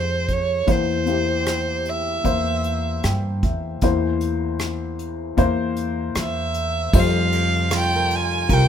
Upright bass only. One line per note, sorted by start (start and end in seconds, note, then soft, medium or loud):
0.00 0.64 F2 medium
0.67 2.21 E2 medium
2.25 3.00 E2 medium
3.04 3.40 G2 medium
3.43 3.78 E2 medium
3.82 5.34 E2 medium
5.38 6.12 E2 medium
6.15 6.90 E2 medium
6.93 8.46 F2 medium
8.49 8.68 C2 medium